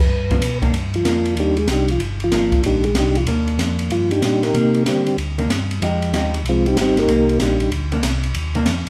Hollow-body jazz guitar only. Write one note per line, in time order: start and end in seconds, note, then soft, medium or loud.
0.31 0.41 F3 medium
0.31 0.41 B3 medium
0.31 0.42 D4 medium
0.62 0.72 D#3 medium
0.62 0.72 A#3 medium
0.62 0.73 D4 medium
1.05 1.53 D#3 medium
1.05 1.53 A#3 medium
1.05 1.54 D4 medium
2.32 2.80 D#3 soft
2.32 2.80 A#3 medium
2.32 2.81 D4 medium
3.28 4.16 D#3 medium
3.28 4.16 A#3 medium
3.28 4.16 D4 medium
4.54 5.02 D#3 medium
4.54 5.03 A#3 medium
5.38 5.49 D#3 medium
5.38 5.49 A#3 medium
5.38 5.49 D4 medium
5.82 6.12 F3 medium
5.82 6.13 G#3 medium
5.82 6.13 D#4 medium
5.82 6.13 G4 medium
6.14 6.32 F3 medium
6.14 6.32 G#3 medium
6.14 6.32 D#4 medium
6.14 6.32 G4 medium
7.09 7.57 D#3 medium
7.09 7.57 A#3 medium
7.92 8.02 D#3 medium
7.92 8.03 A#3 medium
7.92 8.03 D4 medium
8.55 8.66 D#3 medium
8.55 8.66 A#3 medium
8.55 8.66 D4 medium